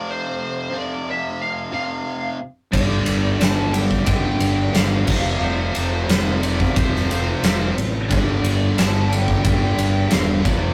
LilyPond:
<<
  \new Staff \with { instrumentName = "Lead electric guitar" } { \time 4/4 \key f \lydian \tempo 4 = 89 c''4 d''8 e''8 f''8 f''4 r8 | d''4 a''8 g''8 g''4 f''4 | c''4 c''8 d''8 c''8 c''4 r8 | d''4 a''8 g''8 g''4 f''8 d''8 | }
  \new Staff \with { instrumentName = "Distorted electric guitar" } { \clef bass \time 4/4 \key f \lydian r1 | <g, d g>2 <g, d g>4. <f, c f>8~ | <f, c f>4. <f, c f>2 r8 | <g, d g>2 <g, d g>4. <f, c f>8 | }
  \new Staff \with { instrumentName = "Overdriven electric guitar" } { \clef bass \time 4/4 \key f \lydian r1 | <g, d g>8 <g, d g>8 <g, d g>8 <g, d g>8 <g, d g>8 <g, d g>8 <g, d g>8 <f, c f>8 | <f, c f>8 <f, c f>8 <f, c f>8 <f, c f>8 <f, c f>8 <f, c f>8 <f, c f>8 <f, c f>8 | <g, d g>8 <g, d g>8 <g, d g>8 <g, d g>8 <g, d g>8 <g, d g>8 <g, d g>8 <f, c f>8 | }
  \new Staff \with { instrumentName = "Overdriven electric guitar" } { \clef bass \time 4/4 \key f \lydian <f, c f>4 <f, c f>4. <f, c f>4 r8 | <g, d g>4. <g, d g>4. <g, d g>8 <f, c f>8~ | <f, c f>4 <f, c f>4. <f, c f>4 r8 | <g, d g>4. <g, d g>4. <g, d g>8 <f, c f>8 | }
  \new Staff \with { instrumentName = "Fingered electric bass" } { \clef bass \time 4/4 \key f \lydian r1 | g,,8 g,,8 g,,4 g,,8 g,,8 g,,8 f,,8 | f,,8 f,,8 f,,4 f,,4 f,,8 a,,8 | g,,8 g,,8 g,,4 g,,8 g,,8 e,,8 f,,8 | }
  \new DrumStaff \with { instrumentName = "Drums" } \drummode { \time 4/4 r4 r4 r4 r4 | <cymc bd>8 cymr8 <cymr sn>8 cymr16 bd16 <bd cymr>8 cymr8 <cymr sn>8 <cymc bd>8 | r8 cymr8 <cymr sn>8 cymr16 bd16 <bd cymr>16 sn16 cymr8 <cymr sn>8 cymr8 | <bd cymr>8 cymr8 <cymr sn>8 cymr16 bd16 <bd cymr>8 cymr8 <cymr sn>8 <bd cymr>8 | }
>>